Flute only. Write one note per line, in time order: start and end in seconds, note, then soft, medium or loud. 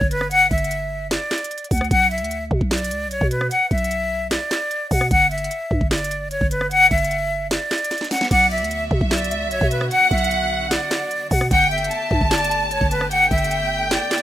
0.11 0.30 B4 medium
0.31 0.50 F#5 loud
0.51 1.07 E5 medium
1.11 1.67 D5 medium
1.71 1.90 F#5 medium
1.91 2.10 F#5 loud
2.11 2.44 E5 medium
2.71 3.09 D5 medium
3.11 3.30 C#5 medium
3.31 3.50 B4 medium
3.51 3.70 F#5 loud
3.71 4.27 E5 medium
4.31 4.87 D5 medium
4.91 5.10 F#5 medium
5.11 5.30 F#5 loud
5.31 5.87 E5 medium
5.91 6.29 D5 medium
6.31 6.50 C#5 medium
6.51 6.70 B4 medium
6.71 6.90 F#5 loud
6.91 7.47 E5 medium
7.51 8.07 D5 medium
8.11 8.30 F#5 medium
8.31 8.50 F#5 loud
8.51 8.84 E5 medium
9.11 9.49 D5 medium
9.51 9.70 C#5 loud
9.71 9.90 B4 medium
9.91 10.10 F#5 loud
10.11 10.67 E5 medium
10.71 11.27 D5 medium
11.31 11.50 F#5 medium
11.51 11.70 F#5 loud
11.71 12.27 E5 medium
12.31 12.69 D5 medium
12.71 12.90 C#5 medium
12.91 13.10 B4 medium
13.11 13.30 F#5 loud
13.31 13.87 E5 medium
13.91 14.22 D5 medium